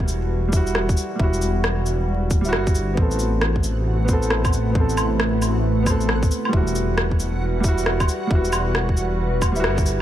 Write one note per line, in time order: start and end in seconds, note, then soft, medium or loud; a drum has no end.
0.00 0.96 E1 medium
0.00 2.98 E3 medium
0.00 0.47 G3 medium
0.00 2.97 G3 medium
0.00 0.27 E4 medium
0.00 0.51 E4 medium
0.00 0.53 F#4 medium
0.00 4.36 F#4 medium
0.00 2.98 B4 medium
0.00 kick medium
0.08 shaker medium
0.48 1.14 G3 medium
0.53 1.18 E4 medium
0.53 1.19 F#4 medium
0.53 kick loud
0.53 shaker medium
0.67 shaker soft
0.75 cross-stick loud
0.89 kick loud
0.89 shaker soft
0.97 shaker medium
1.16 2.27 G3 medium
1.16 2.29 E4 medium
1.16 kick loud
1.20 2.30 E1 loud
1.20 2.31 F#4 medium
1.33 shaker soft
1.42 shaker medium
1.64 cross-stick loud
1.86 shaker medium
2.30 2.55 D1 loud
2.30 kick loud
2.30 shaker medium
2.41 2.94 G3 medium
2.41 2.96 E4 medium
2.41 shaker soft
2.49 2.97 F#4 medium
2.49 cross-stick loud
2.53 2.96 G1 medium
2.67 kick loud
2.67 shaker soft
2.75 shaker medium
2.94 4.52 A1 medium
2.94 6.53 C3 medium
2.94 4.03 B3 medium
2.94 10.02 F#4 medium
2.94 10.02 F#5 medium
2.94 kick loud
2.98 4.07 C4 medium
2.98 4.09 A4 medium
3.11 shaker soft
3.19 shaker soft
3.26 6.53 A3 medium
3.41 10.02 B4 medium
3.41 cross-stick loud
3.52 7.57 E4 medium
3.56 kick medium
3.64 shaker medium
4.05 4.70 B3 medium
4.05 kick medium
4.05 shaker medium
4.09 4.73 C4 medium
4.09 4.75 A4 medium
4.22 shaker soft
4.30 cross-stick loud
4.45 kick loud
4.45 low woodblock medium
4.45 shaker soft
4.53 4.74 A1 medium
4.53 shaker medium
4.72 6.30 A1 loud
4.72 5.81 B3 medium
4.72 kick loud
4.76 5.85 C4 medium
4.80 5.87 A4 medium
4.89 shaker soft
4.97 low woodblock medium
4.97 shaker medium
5.20 cross-stick loud
5.42 low woodblock soft
5.42 shaker medium
5.82 6.49 B3 medium
5.82 kick medium
5.87 6.51 C4 medium
5.87 6.53 A4 medium
5.87 low woodblock medium
5.87 shaker medium
6.00 shaker soft
6.09 cross-stick medium
6.23 kick loud
6.23 shaker soft
6.31 shaker medium
6.45 7.59 G3 medium
6.45 low woodblock medium
6.53 8.08 E1 loud
6.53 10.02 E3 medium
6.53 7.62 E4 medium
6.53 7.64 F#4 medium
6.53 kick loud
6.67 shaker soft
6.75 shaker medium
6.84 10.02 G3 medium
6.98 10.02 F#4 medium
6.98 cross-stick loud
7.12 kick medium
7.20 shaker medium
7.60 8.26 G3 medium
7.60 kick loud
7.60 shaker medium
7.64 8.29 E4 medium
7.64 8.31 F#4 medium
7.78 shaker soft
7.86 cross-stick medium
8.00 kick loud
8.00 low woodblock medium
8.00 shaker soft
8.09 shaker medium
8.27 9.41 E1 medium
8.27 9.38 G3 medium
8.27 kick loud
8.31 9.40 E4 medium
8.31 9.42 F#4 medium
8.45 shaker soft
8.53 low woodblock medium
8.53 shaker medium
8.75 cross-stick loud
8.89 kick medium
8.97 shaker medium
9.42 9.66 D1 loud
9.42 kick medium
9.42 low woodblock medium
9.42 shaker medium
9.52 10.02 G3 medium
9.52 10.02 E4 medium
9.52 shaker soft
9.60 10.02 F#4 medium
9.64 10.02 G1 medium
9.64 cross-stick loud
9.78 kick loud
9.78 shaker soft
9.86 shaker medium